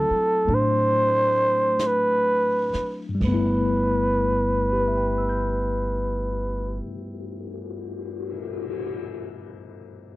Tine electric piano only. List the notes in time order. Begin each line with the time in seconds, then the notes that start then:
Already playing: F#3 A3 C4 E4
0.47 A3 D4
3.09 G2
3.15 G3
3.21 A3
3.27 B3
3.34 E4
4.72 G4
4.80 B4
4.88 E5
4.97 G5
5.07 B5
5.18 E6
5.29 G6